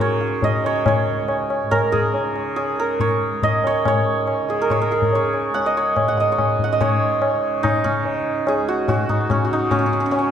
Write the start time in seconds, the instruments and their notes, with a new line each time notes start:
Already playing: tanpura C#2 G#2 C#3, santur F#4 G#4 A#4
0.00 santur C#5, tabla na, tabla ge
0.21 tabla te
0.42 santur D#5, tabla tin, tabla ge
0.49 tanpura C#3
0.64 santur C#5, tabla na
0.86 santur C#5, tabla na, tabla ge
1.06 tanpura C#2
1.28 tabla na
1.50 tabla na
1.63 tanpura G#2
1.71 santur A#4, tabla na, tabla ge
1.92 santur G#4, tabla ge
2.14 tabla tin
2.19 tanpura C#3
2.36 tabla na
2.56 santur G#4, tabla na
2.75 tanpura C#3
2.79 santur A#4
3.00 santur C#5, tabla tin, tabla ge
3.31 tanpura C#2
3.43 santur D#5, tabla tin, tabla ge
3.64 santur C#5, tabla na
3.85 tanpura G#2, santur C#5, tabla na, tabla ge
4.27 tabla na
4.43 tanpura C#3
4.49 santur G#4, tabla na
4.62 santur A#4
4.70 santur C#5, tabla na, tabla ge
4.81 santur A#4
4.91 santur G#4, tabla te
4.97 tanpura C#3
5.02 tabla ge
5.13 santur C#5, tabla tin
5.34 tabla na
5.53 tanpura C#2, santur F#5, tabla na
5.66 santur D#5
5.77 santur C#5
5.96 tabla na, tabla ge
6.07 tanpura G#2, santur F#5
6.18 santur D#5, tabla te
6.32 santur C#5
6.38 tabla na, tabla ge
6.59 tanpura C#3, tabla ge
6.64 santur F#5
6.72 santur D#5
6.80 tanpura G#2, santur C#5, tabla na, tabla ge
7.22 tabla na
7.34 tanpura C#3
7.63 santur D#4, tabla na, tabla ge
7.84 santur C#4, tabla ge
7.90 tanpura C#3
8.05 tabla tin
8.47 tanpura C#2, santur G#4, tabla na
8.68 santur F#4
8.88 santur F#4, tabla na, tabla ge
8.99 tanpura G#2
9.09 santur D#4, tabla ge
9.30 santur C#4, tabla na, tabla ge
9.45 santur F#4
9.51 tanpura C#3, santur D#4, tabla ge
9.71 santur C#4, tabla na, tabla ge
9.79 santur C#4
9.86 santur C#4
9.93 santur C#4
10.00 santur C#4
10.06 tanpura C#3, santur C#4
10.11 santur C#4, tabla na
10.19 santur C#4